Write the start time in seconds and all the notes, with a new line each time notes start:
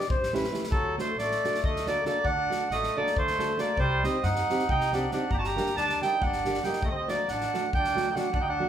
0.01 snare
0.08 A1 C5, kick
0.23 snare
0.33 A3 C#4 E4 G4 B4, snare
0.44 snare
0.52 A3 C#4 E4 G4, snare
0.64 snare
0.70 D2 F#3 A4, kick
0.98 A3 D4 F#4 A4 C5, snare
1.15 A1 D5, snare
1.20 A3
1.32 snare
1.44 A3 D4 F#4 A4, snare
1.55 snare
1.63 D2 A3 D#5, kick
1.76 snare
1.86 A3 A#3 D4 F#4 A4 D5, snare
2.05 A3 A#3 D4 F#4 A4 D5, snare
2.24 D2 D4 F#5, kick
2.50 A3 D4 F#4 A4, snare
2.70 A1 A3 D#5, snare
2.83 snare
2.96 A3 A#3 D4 F#4 A4 D5
3.07 snare
3.16 D2 A3 C5, kick
3.28 snare
3.39 A3 D4 F#4 A4, snare
3.57 A3 A#3 D4 F#4 A4 D5, snare
3.76 C2 G3 C5, kick
4.03 G3 C4 D#4 G4 D#5, snare
4.23 G2 D#4 F#5, snare
4.36 snare
4.50 G3 C4 D#4 G4, snare
4.59 snare
4.69 C2 D#4 G5, kick
4.81 snare
4.92 G3 C4 D4 D#4 G4 F#5, snare
5.12 G3 C4 D4 D#4 G4 F#5, snare
5.31 G1 G4 A#5, kick
5.38 F#4 A5
5.44 G4 A#5, snare
5.56 G3 A#3 D4 G4, snare
5.67 snare
5.76 D2 D4 A5, snare
5.89 snare
6.02 G3 A#3 D4 D#4 G4 G5, snare
6.21 G1 D4 F#5, kick
6.33 snare
6.45 G3 A#3 D4 G4, snare
6.54 snare
6.64 G3 A#3 D4 D#4 G4 G5, snare
6.73 snare
6.82 D2 A3 D#5, kick
6.90 C4 D#5
6.96 C4 D#5
7.08 F#3 A3 A#3 D4 F#4 D5, snare
7.28 A1 D4 F#5, snare
7.41 snare
7.54 F#3 A3 D4 F#4, snare
7.73 D2 D4 G5, kick
7.85 snare
7.95 F#3 A3 D4 F#4, snare
8.11 D#4 F#5 G5
8.15 F#3 A3 D4 F#4, snare
8.33 D2 D4 F#5, kick
8.41 D#4 G5
8.48 D4 F#5
8.60 F#3 A3 D4 F#4